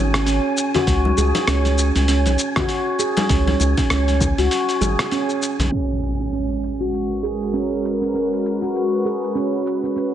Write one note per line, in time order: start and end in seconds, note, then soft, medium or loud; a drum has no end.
0.00 0.40 G#1 medium
0.00 5.74 G#5 medium
0.14 0.25 C#4 medium
0.14 cross-stick medium
0.14 open hi-hat soft
0.14 shaker soft
0.26 0.73 C#4 medium
0.26 open hi-hat medium
0.26 shaker soft
0.57 shaker medium
0.74 0.87 F#4 medium
0.74 open hi-hat soft
0.74 high conga soft
0.74 low conga medium
0.74 shaker soft
0.87 1.14 C#2 medium
0.87 kick loud
0.87 open hi-hat medium
0.87 shaker soft
1.05 high conga medium
1.18 1.32 C#2 medium
1.18 1.34 G#4 medium
1.18 muted conga soft
1.18 shaker medium
1.35 open hi-hat soft
1.35 muted conga medium
1.35 shaker soft
1.47 1.91 C#2 loud
1.47 1.65 C#4 loud
1.47 cross-stick medium
1.47 open hi-hat medium
1.47 shaker soft
1.65 open hi-hat soft
1.65 high conga soft
1.65 shaker soft
1.78 shaker medium
1.95 2.28 C#2 loud
1.95 2.07 C#4 medium
1.95 open hi-hat soft
1.95 high conga soft
1.95 shaker soft
2.08 2.55 C#4 medium
2.08 open hi-hat medium
2.08 shaker soft
2.26 2.37 B1 medium
2.26 open hi-hat soft
2.26 muted conga soft
2.26 shaker soft
2.39 shaker medium
2.56 2.98 F#4 medium
2.56 kick loud
2.56 cross-stick medium
2.56 open hi-hat soft
2.56 low conga loud
2.56 shaker soft
2.69 open hi-hat medium
2.69 shaker soft
2.99 3.16 G#4 medium
2.99 shaker medium
3.17 open hi-hat soft
3.17 muted conga medium
3.17 high conga soft
3.17 shaker soft
3.29 3.56 C#2 medium
3.29 3.46 C#4 medium
3.29 kick loud
3.29 open hi-hat medium
3.29 shaker soft
3.47 open hi-hat soft
3.47 high conga medium
3.60 3.75 C#2 medium
3.60 muted conga soft
3.60 shaker medium
3.77 3.89 C#4 medium
3.77 kick medium
3.77 open hi-hat soft
3.77 muted conga medium
3.77 shaker soft
3.90 4.34 C#2 medium
3.90 4.37 C#4 medium
3.90 cross-stick medium
3.90 open hi-hat medium
3.90 shaker soft
4.08 open hi-hat soft
4.08 high conga soft
4.08 shaker soft
4.21 kick loud
4.21 low conga medium
4.21 shaker medium
4.38 4.49 C#2 loud
4.38 4.80 F#4 medium
4.38 open hi-hat soft
4.38 high conga soft
4.38 shaker soft
4.51 open hi-hat medium
4.51 shaker soft
4.69 open hi-hat soft
4.69 shaker soft
4.81 4.96 G#1 medium
4.81 4.98 G#4 medium
4.81 high conga medium
4.81 shaker medium
4.99 cross-stick medium
4.99 open hi-hat soft
4.99 shaker soft
5.11 5.28 C#4 loud
5.11 open hi-hat medium
5.11 shaker soft
5.29 shaker soft
5.42 shaker medium
5.59 5.70 B1 medium
5.59 5.71 C#4 medium
5.59 open hi-hat soft
5.59 high conga soft
5.59 low conga medium
5.59 shaker soft
5.72 10.14 G#3 medium
5.72 5.89 C#4 medium
5.72 impact medium
5.72 shaker soft
5.90 shaker soft
6.03 shaker medium
6.20 6.31 C#4 medium
6.20 shaker soft
6.33 6.79 C#4 medium
6.33 10.14 F#4 medium
6.33 shaker soft
6.63 shaker medium
6.71 10.14 B4 medium
6.81 7.22 F#4 medium
6.81 10.14 A#4 medium
6.81 shaker soft
6.94 shaker soft
7.23 7.40 G#4 medium
7.23 shaker medium
7.42 shaker soft
7.53 7.70 C#4 medium
7.53 shaker soft
7.85 shaker medium
8.01 8.13 C#4 medium
8.01 shaker soft
8.14 8.61 C#4 medium
8.14 shaker soft
8.33 shaker soft
8.45 shaker medium
8.62 9.04 F#4 medium
8.62 shaker soft
8.75 shaker soft
9.05 9.22 G#4 medium
9.05 shaker medium
9.23 shaker soft
9.35 9.52 C#4 medium
9.35 shaker soft
9.66 shaker medium
9.84 9.95 C#4 medium
9.84 shaker soft
9.96 10.14 C#4 medium
9.96 shaker soft